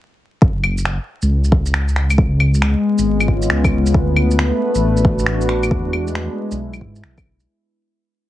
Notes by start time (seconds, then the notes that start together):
0.42 F#1, kick
0.64 claves
0.78 shaker
0.85 finger snap
1.22 C#2, shaker
1.44 shaker
1.52 kick
1.66 shaker
1.74 finger snap
1.88 shaker
1.96 finger snap
2.10 claves, shaker
2.18 C#2 G#3, kick
2.37 B3, claves
2.54 shaker
2.62 finger snap
2.96 G#1 C#4, shaker
3.00 F4 B4
3.20 claves, shaker
3.28 kick
3.42 shaker
3.50 C#2, finger snap
3.64 kick, claves, shaker
3.86 shaker
3.94 D2 A3, kick
4.16 claves
4.31 D4, shaker
4.39 finger snap
4.75 A1 F#4, shaker
4.97 shaker
5.05 kick
5.19 shaker
5.26 finger snap
5.41 shaker
5.49 finger snap
5.63 claves, shaker
5.71 E2 G#3, kick
5.93 claves
6.07 shaker
6.15 finger snap
6.30 E4
6.51 B1, shaker
6.73 claves, shaker
6.81 G#2, kick
6.96 shaker
7.03 B1, finger snap
7.18 kick, claves, shaker
7.40 shaker